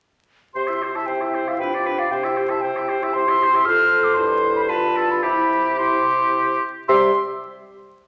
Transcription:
0.54 1.02 C3 soft
0.54 0.71 G4 soft
0.54 0.69 C5 soft
0.54 0.92 C6 medium
0.67 0.84 E4 soft
0.67 0.84 E5 soft
0.83 0.97 G4 soft
0.83 0.97 C5 soft
0.95 1.08 E4 soft
0.95 1.07 E5 soft
0.95 1.08 A5 soft
1.06 1.54 C3 soft
1.06 1.62 E4 soft
1.06 1.23 G4 soft
1.06 1.23 C5 soft
1.06 1.50 G5 soft
1.21 1.38 E4 soft
1.21 1.36 E5 soft
1.35 1.50 G4 soft
1.35 1.50 C5 soft
1.48 1.60 E4 soft
1.48 1.59 E5 soft
1.48 1.61 F5 medium
1.59 2.06 C3 medium
1.59 1.75 D4 soft
1.59 2.13 F4 soft
1.59 1.76 B4 soft
1.59 2.01 G5 medium
1.74 1.88 F4 soft
1.74 1.87 D5 soft
1.86 2.01 D4 soft
1.86 2.00 B4 soft
1.99 2.12 F4 soft
1.99 2.11 D5 soft
1.99 2.13 F5 medium
2.11 2.57 C3 medium
2.11 3.15 G4 medium
2.11 2.27 G4 soft
2.11 2.26 C5 soft
2.11 2.50 G5 medium
2.24 2.39 E4 soft
2.24 2.38 E5 soft
2.37 2.51 G4 soft
2.37 2.51 C5 soft
2.49 2.62 E4 soft
2.49 2.62 E5 soft
2.49 2.63 A5 medium
2.61 3.09 C3 medium
2.61 2.77 G4 soft
2.61 2.78 C5 soft
2.61 3.15 G5 medium
2.75 2.91 E4 soft
2.75 2.90 E5 soft
2.89 3.03 G4 soft
2.89 3.05 C5 soft
3.02 3.14 E4 soft
3.02 3.16 E5 soft
3.13 3.61 C3 medium
3.13 3.27 E4 medium
3.13 3.29 G4 medium
3.13 3.31 C5 soft
3.13 3.67 C6 medium
3.27 3.42 E4 soft
3.27 3.45 E5 soft
3.40 3.67 G4 medium
3.40 3.55 G4 soft
3.40 3.57 C5 medium
3.53 3.66 E4 soft
3.53 3.67 E5 soft
3.65 4.20 F2 medium
3.65 4.19 F4 medium
3.65 4.71 A4 medium
3.65 4.16 C5 medium
3.65 4.05 F6 medium
4.04 4.16 D6 medium
4.14 4.70 E4 medium
4.14 4.71 C5 medium
4.14 4.55 C6 medium
4.18 5.23 G2 medium
4.56 4.62 B5 medium
4.68 5.25 F4 medium
4.68 5.23 F4 medium
4.68 4.98 B4 soft
4.68 5.13 A5 medium
4.96 5.24 A4 medium
5.11 5.24 B5 medium
5.23 6.59 C3 medium
5.23 6.62 E4 soft
5.23 5.78 E4 soft
5.23 5.78 G4 soft
5.23 5.80 B5 medium
5.79 6.60 E4 soft
5.79 6.61 G4 soft
5.79 6.62 C6 medium
6.88 7.12 C3 medium
6.88 7.12 G3 medium
6.88 7.12 G4 medium
6.88 7.11 E5 medium
6.88 7.19 C6 medium

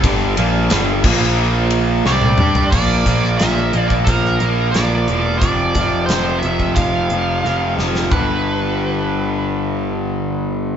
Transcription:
0.00 0.35 G1 medium
0.00 0.36 G2 medium
0.00 1.01 G3 medium
0.00 1.01 D4 medium
0.00 1.01 D5 medium
0.00 kick loud
0.00 ride medium
0.05 0.37 D3 loud
0.05 0.37 G3 loud
0.37 0.68 A#1 medium
0.37 0.70 A#2 medium
0.37 0.70 F3 medium
0.37 0.70 A#3 loud
0.37 ride medium
0.70 1.02 G1 medium
0.70 1.03 G2 medium
0.70 1.03 D3 loud
0.70 1.04 G3 loud
0.70 snare loud
0.70 ride loud
1.03 2.01 A#1 loud
1.03 2.04 A#2 medium
1.03 2.05 F3 loud
1.03 2.03 A#3 medium
1.03 2.05 A#3 loud
1.03 2.04 F4 medium
1.03 2.04 C5 medium
1.03 kick loud
1.03 crash loud
1.70 ride medium
2.05 2.36 C2 medium
2.05 2.38 C3 medium
2.05 2.72 G3 medium
2.05 2.38 G3 medium
2.05 2.38 C4 loud
2.05 2.72 D4 medium
2.05 2.72 A4 medium
2.05 2.70 D5 medium
2.05 snare medium
2.22 high tom medium
2.38 2.70 G2 medium
2.38 2.71 G3 medium
2.38 2.72 D4 medium
2.38 2.72 G4 medium
2.38 mid tom medium
2.55 floor tom medium
2.71 3.04 A#1 medium
2.71 3.05 A#2 medium
2.71 3.07 F3 medium
2.71 3.06 A#3 loud
2.71 3.38 D5 medium
2.71 kick loud
2.71 crash medium
3.06 3.37 A#1 medium
3.06 3.39 A#2 medium
3.06 3.40 F3 medium
3.06 3.40 A#3 medium
3.06 kick medium
3.06 closed hi-hat medium
3.24 snare soft
3.38 3.71 A#1 medium
3.38 3.73 A#2 medium
3.38 3.74 F3 medium
3.38 3.74 A#3 medium
3.38 3.87 E5 medium
3.38 snare loud
3.38 closed hi-hat medium
3.73 4.04 A#1 medium
3.73 4.06 A#2 medium
3.73 4.07 F3 medium
3.73 4.08 A#3 medium
3.73 closed hi-hat medium
3.88 3.93 D5 medium
3.88 kick medium
4.04 4.38 A#1 medium
4.04 4.40 A#2 medium
4.04 4.69 A#4 medium
4.04 kick loud
4.04 closed hi-hat medium
4.09 4.41 F3 medium
4.09 4.41 A#3 loud
4.25 snare soft
4.40 4.72 A#1 medium
4.40 4.74 A#2 medium
4.40 4.74 F3 medium
4.40 4.75 A#3 medium
4.40 closed hi-hat medium
4.71 5.06 A#1 medium
4.71 5.08 A#2 medium
4.71 5.38 D5 medium
4.71 closed hi-hat medium
4.76 5.09 F3 medium
4.76 5.09 A#3 medium
4.76 snare loud
5.08 5.39 E1 medium
5.08 5.40 A#2 medium
5.08 5.40 F3 medium
5.08 5.40 A#3 medium
5.08 closed hi-hat medium
5.39 5.73 F1 medium
5.39 6.03 D5 medium
5.39 kick loud
5.39 closed hi-hat medium
5.43 5.76 F2 medium
5.43 5.75 C3 medium
5.43 5.76 F3 medium
5.75 6.06 F1 medium
5.75 6.08 F2 medium
5.75 6.09 C3 medium
5.75 6.10 F3 medium
5.75 kick medium
5.75 closed hi-hat medium
6.06 6.40 F1 medium
6.06 6.43 F2 medium
6.06 6.39 C5 medium
6.06 snare loud
6.06 closed hi-hat medium
6.10 6.43 C3 medium
6.10 6.43 F3 medium
6.39 6.72 E5 medium
6.43 6.74 F1 medium
6.43 6.76 F2 medium
6.43 6.77 C3 medium
6.43 6.78 F3 medium
6.43 closed hi-hat medium
6.60 kick medium
6.75 7.08 F1 medium
6.75 7.10 F2 medium
6.75 7.11 C3 medium
6.75 7.11 F3 medium
6.75 7.73 F5 medium
6.75 kick loud
6.75 closed hi-hat medium
7.10 7.41 F1 medium
7.10 7.44 F2 medium
7.10 7.44 C3 medium
7.10 7.44 F3 medium
7.10 closed hi-hat medium
7.45 7.76 F1 medium
7.45 7.78 F2 medium
7.45 7.78 C3 medium
7.45 7.79 F3 medium
7.45 snare medium
7.78 8.09 F1 medium
7.78 8.10 F2 medium
7.78 8.10 C3 medium
7.78 8.11 F3 medium
7.78 snare medium
7.95 snare medium
8.11 10.77 G1 medium
8.11 10.77 G2 medium
8.11 10.77 D3 medium
8.11 10.77 B4 medium
8.11 kick medium
8.11 floor tom medium
8.15 10.77 G3 medium

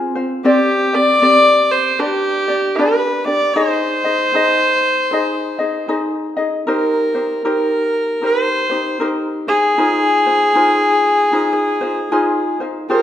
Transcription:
0.00 0.16 C4 medium
0.00 0.15 F4 medium
0.00 0.16 G#4 medium
0.00 0.14 C5 medium
0.15 0.44 C4 soft
0.15 0.45 F4 medium
0.15 0.43 C5 medium
0.44 0.93 C4 medium
0.44 0.93 G4 medium
0.44 0.97 G4 loud
0.44 0.93 C5 medium
0.44 0.92 D5 medium
0.93 1.21 C4 soft
0.93 1.21 G4 soft
0.93 1.21 D5 medium
0.93 1.73 D5 loud
1.22 1.99 C4 medium
1.22 1.99 G4 medium
1.22 1.98 C5 medium
1.22 2.00 D5 medium
1.71 2.01 C5 loud
1.99 2.48 D4 medium
1.99 2.77 G4 loud
1.99 2.48 G4 medium
1.99 2.48 B4 medium
1.99 2.47 D5 medium
2.48 2.78 D4 soft
2.48 2.78 G4 soft
2.48 2.78 D5 medium
2.76 3.26 D4 medium
2.76 3.26 G4 medium
2.76 3.27 B4 medium
2.80 3.25 D5 medium
3.25 3.55 D4 soft
3.25 3.56 G4 medium
3.25 3.56 D5 loud
3.25 3.56 D5 medium
3.54 4.04 D#4 medium
3.54 4.04 G#4 medium
3.54 5.88 C5 loud
3.54 4.04 C5 medium
3.54 4.03 D#5 medium
4.04 4.33 D#4 soft
4.04 4.33 G#4 soft
4.04 4.34 D#5 soft
4.34 5.12 D#4 medium
4.34 5.12 G#4 medium
4.34 5.11 C5 medium
4.34 5.13 D#5 medium
5.11 5.59 D#4 medium
5.11 5.59 G#4 medium
5.11 5.60 C5 medium
5.11 5.58 D#5 medium
5.59 5.87 D#4 soft
5.59 5.88 G#4 medium
5.59 5.88 D#5 medium
5.88 6.37 D#4 medium
5.88 6.37 G#4 medium
5.88 6.37 C5 medium
5.88 6.35 D#5 medium
6.37 6.67 D#4 soft
6.37 6.67 G#4 medium
6.37 6.67 D#5 medium
6.67 7.16 D#4 medium
6.67 7.14 G4 medium
6.67 7.15 A#4 medium
6.67 7.42 A#4 medium
6.67 7.13 C5 medium
7.15 7.44 D#4 soft
7.15 7.44 G4 medium
7.15 7.44 C5 soft
7.45 8.22 D#4 medium
7.45 8.22 G4 medium
7.45 8.20 A#4 medium
7.45 8.27 A#4 loud
7.45 8.23 C5 medium
8.21 8.71 D#4 medium
8.21 8.70 G4 medium
8.21 8.70 A#4 medium
8.21 8.69 C5 medium
8.26 9.02 C5 loud
8.70 9.00 D#4 soft
8.70 9.00 G4 medium
8.70 9.00 C5 medium
9.00 9.48 D#4 medium
9.00 9.49 G4 medium
9.00 9.47 A#4 medium
9.00 9.46 C5 medium
9.47 9.77 D#4 soft
9.47 12.55 G#4 loud
9.47 9.77 C5 medium
9.78 10.26 D#4 medium
9.78 10.26 F4 medium
9.78 10.26 G#4 medium
9.78 10.25 C5 medium
10.26 10.54 D#4 soft
10.26 10.55 F4 soft
10.26 10.55 C5 soft
10.55 11.32 D#4 medium
10.55 11.33 F4 medium
10.55 11.31 G#4 medium
10.55 11.33 C5 medium
11.32 11.81 D#4 medium
11.32 11.81 F4 medium
11.32 11.81 G#4 medium
11.32 11.80 C5 medium
11.81 12.11 D#4 medium
11.81 12.11 F4 medium
11.81 12.10 C5 medium
12.12 12.60 D#4 medium
12.12 12.59 F4 medium
12.12 12.59 G#4 medium
12.12 12.59 C5 loud
12.60 12.89 D#4 soft
12.60 12.89 F4 medium
12.60 12.89 C5 medium
12.90 13.02 F4 medium
12.90 13.02 G4 medium
12.90 13.02 G#4 medium
12.90 13.02 A#4 loud
12.90 13.02 C5 medium

